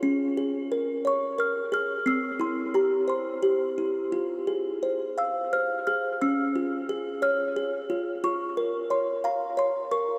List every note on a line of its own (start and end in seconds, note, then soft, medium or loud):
0.03 1.38 C#4 medium
0.37 1.71 G#4 medium
0.72 1.37 A#4 medium
1.05 2.06 C#5 medium
1.05 1.41 C#6 medium
1.38 2.06 A#4 medium
1.38 1.71 F6 medium
1.72 2.06 G#4 medium
1.72 1.89 F6 medium
2.06 3.43 C4 medium
2.06 2.42 E6 medium
2.40 3.77 E4 medium
2.40 2.72 C6 medium
2.74 3.41 G4 medium
2.74 2.90 A#5 medium
3.08 4.12 C5 medium
3.08 3.83 C6 medium
3.43 4.12 G4 medium
3.78 4.13 E4 medium
4.12 5.52 F4 medium
4.47 5.86 G#4 medium
4.83 5.52 C5 medium
5.18 6.21 F5 medium
5.18 5.54 E6 medium
5.53 6.21 C5 medium
5.53 5.86 F6 medium
5.87 6.21 G#4 medium
5.87 6.22 F6 medium
6.21 7.57 C#4 medium
6.21 7.26 E6 medium
6.55 7.89 F4 medium
6.89 7.55 G#4 medium
7.22 8.24 C#5 medium
7.22 7.94 F6 medium
7.56 8.24 G#4 medium
7.90 8.23 F4 medium
8.24 9.59 F4 medium
8.24 8.93 C#6 medium
8.57 9.90 A#4 medium
8.90 9.56 C#5 medium
8.90 9.26 C6 medium
9.24 10.19 F5 medium
9.24 9.60 A#5 medium
9.57 10.19 C#5 medium
9.57 9.93 C6 medium
9.91 10.19 A#4 medium
9.91 10.07 C#6 medium